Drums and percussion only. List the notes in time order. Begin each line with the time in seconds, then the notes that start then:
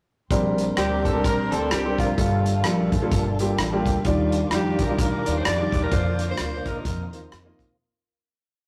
0.31 kick, closed hi-hat
0.58 closed hi-hat
0.77 cross-stick, closed hi-hat
1.05 kick, closed hi-hat
1.24 kick, closed hi-hat
1.52 closed hi-hat
1.71 cross-stick, closed hi-hat
1.98 kick, cross-stick, closed hi-hat
2.18 kick, closed hi-hat
2.46 closed hi-hat
2.64 cross-stick, closed hi-hat
2.92 kick, closed hi-hat
3.12 kick, closed hi-hat
3.39 closed hi-hat
3.58 cross-stick, closed hi-hat
3.86 kick, closed hi-hat
4.05 kick, closed hi-hat
4.32 closed hi-hat
4.51 cross-stick, closed hi-hat
4.79 kick, closed hi-hat
4.99 kick, closed hi-hat
5.26 closed hi-hat
5.45 cross-stick, closed hi-hat
5.72 kick, closed hi-hat
5.92 kick, closed hi-hat
6.19 closed hi-hat
6.38 cross-stick, closed hi-hat
6.66 kick, cross-stick, closed hi-hat
6.85 kick, closed hi-hat
7.13 closed hi-hat
7.32 cross-stick, closed hi-hat
7.59 kick, cross-stick, closed hi-hat